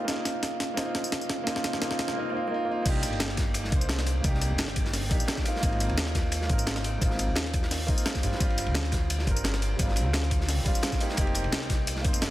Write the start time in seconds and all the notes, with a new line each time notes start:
0.05 A#3 C4, snare, closed hi-hat, tambourine
0.09 D#4 F4
0.25 snare, closed hi-hat, tambourine
0.43 snare, closed hi-hat, tambourine
0.60 snare, closed hi-hat, tambourine
0.74 A#3 C4, snare, closed hi-hat, tambourine
0.78 D#4 F4
0.95 snare, closed hi-hat
1.04 tambourine
1.12 snare, closed hi-hat, tambourine
1.21 tambourine
1.29 snare, closed hi-hat
1.44 A#3 C4, snare, closed hi-hat, tambourine
1.48 D#4 F4
1.56 snare
1.64 snare, closed hi-hat, tambourine
1.73 snare
1.78 A#3 C4, snare, closed hi-hat, tambourine
1.83 D#4 F4
1.91 snare
1.99 snare, closed hi-hat, tambourine
2.08 snare
2.13 A#3 C4
2.17 D#4 F4
2.30 A#3 C4
2.34 D#4 F4
2.48 A#3 C4
2.52 D#4 F4
2.65 A#3 C4
2.69 D#4 F4
2.82 C2 A#3 D4, kick, closed hi-hat, ride, tambourine, crash
2.87 D#4 G4
2.95 ride
3.03 closed hi-hat, ride, tambourine
3.12 G1, ride
3.20 snare, closed hi-hat, ride, tambourine
3.29 snare
3.37 kick, snare, closed hi-hat, ride
3.54 closed hi-hat, ride, tambourine
3.64 snare
3.69 C2 A#3 D4, kick, closed hi-hat, ride
3.74 D#4 C5
3.81 ride, tambourine
3.89 snare, closed hi-hat, ride, tambourine
3.99 snare, tambourine
4.06 closed hi-hat, ride
4.21 C2 A#3 D4, kick, closed hi-hat, ride, tambourine
4.26 D#4 G4
4.34 snare
4.41 closed hi-hat, ride, tambourine
4.51 G1
4.58 snare, closed hi-hat, ride, tambourine
4.68 snare
4.76 kick, closed hi-hat, ride
4.85 snare
4.93 snare, closed hi-hat, open hi-hat, tambourine
5.09 A#1 A#3 D4 D#4 G4, kick, closed hi-hat, ride
5.20 tambourine
5.28 snare, closed hi-hat, ride, tambourine
5.37 kick, snare, tambourine
5.44 A#3 C4 D#4 F4, closed hi-hat, ride
5.56 snare
5.60 G#1 A#3 C4, kick, closed hi-hat, ride, tambourine
5.64 D#4 F4
5.73 ride
5.80 closed hi-hat, ride, tambourine
5.89 D#2, ride
5.98 snare, closed hi-hat, ride, tambourine
6.07 snare
6.15 kick, snare, closed hi-hat, ride
6.32 closed hi-hat, ride, tambourine
6.42 snare
6.46 G#1 A#3 C4, kick, closed hi-hat, ride
6.51 D#4 A#4
6.58 ride, tambourine
6.67 snare, closed hi-hat, ride, tambourine
6.76 snare, tambourine
6.84 closed hi-hat, ride
6.98 G#1 A#3 C4, kick, closed hi-hat, tambourine
7.02 D#4 F4, ride
7.11 snare
7.19 closed hi-hat, ride, tambourine
7.28 D#2
7.36 snare, closed hi-hat, ride, tambourine
7.46 snare
7.54 kick, closed hi-hat, ride
7.62 snare
7.71 snare, closed hi-hat, open hi-hat, tambourine
7.87 A#3 C4 D#4 F4, kick, closed hi-hat
7.98 tambourine
8.06 snare, closed hi-hat, ride, tambourine
8.15 kick, snare, closed hi-hat, tambourine
8.21 G2 G3 C4 D4 F4, closed hi-hat, ride, tambourine
8.32 snare
8.37 G1 G3 C4, kick, closed hi-hat, ride, tambourine
8.41 D4 F4
8.50 ride
8.58 closed hi-hat, ride, tambourine
8.66 D2, ride
8.75 snare, closed hi-hat, ride, tambourine
8.85 snare
8.92 kick, snare, closed hi-hat, ride
9.10 closed hi-hat, ride, tambourine
9.19 snare
9.24 G1 G3 C4, kick, closed hi-hat, ride
9.28 D4 A#4
9.36 ride, tambourine
9.44 snare, closed hi-hat, ride, tambourine
9.53 snare, tambourine
9.62 closed hi-hat, ride
9.76 G1 G3 C4, kick, closed hi-hat, ride, tambourine
9.80 D4 F4
9.88 snare
9.96 closed hi-hat, ride, tambourine
10.06 D2
10.13 snare, closed hi-hat, ride, tambourine
10.23 snare
10.31 kick, closed hi-hat, ride
10.41 snare
10.48 snare, closed hi-hat, open hi-hat, tambourine
10.64 F1 G3 C4 D4 F4, kick, closed hi-hat, ride
10.75 tambourine
10.83 snare, closed hi-hat, ride, tambourine
10.92 kick, snare, tambourine
10.99 A#3 C4 D#4 G4, closed hi-hat, ride
11.09 snare
11.14 F1 A#3 C4, kick, closed hi-hat, ride, tambourine
11.19 D#4 G4
11.27 ride
11.34 closed hi-hat, ride, tambourine
11.44 C2, ride
11.52 snare, closed hi-hat, ride, tambourine
11.62 snare
11.70 kick, snare, closed hi-hat, ride
11.87 closed hi-hat, ride, tambourine
11.96 snare
12.01 F1 A#3 C4, kick, closed hi-hat, ride
12.06 D#4 C5
12.13 ride, tambourine
12.22 snare, closed hi-hat, ride, tambourine